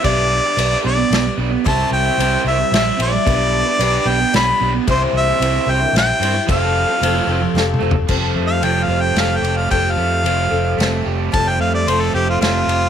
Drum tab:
CC |------------------|------------------|------------------|------------------|
RD |x-----x-----x-----|x-----x-----x--x--|x-----x-----x-----|x-----x-----x--x--|
SD |------------o-----|------------o-----|------------o-----|------------o-----|
T2 |------------------|------------------|------------------|------------------|
FT |------------------|------------------|------------------|------------------|
BD |o-----------------|o-----------------|o-----------------|o-----------------|

CC |------------------|x-----------------|------------------|------------------|
RD |x-----x-----------|------x-----x--x--|x-----x-----x-----|x-----x-----x--x--|
SD |------------o-----|------------o-----|------------o-----|------------o-----|
T2 |--------------o---|------------------|------------------|------------------|
FT |----------------o-|------------------|------------------|------------------|
BD |o-----------------|o-----------------|o-----------------|o-----------------|